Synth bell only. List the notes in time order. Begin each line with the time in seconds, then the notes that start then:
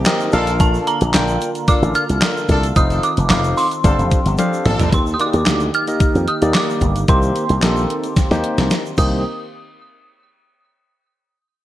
0.60 A5
0.87 A#5
1.68 D6
1.95 F6
2.76 D#6
3.04 D6
3.31 D6
3.57 C6
4.94 C6
5.14 D#6
5.21 D6
5.75 F6
6.28 D#6
6.55 D6
7.09 C6
8.98 D#6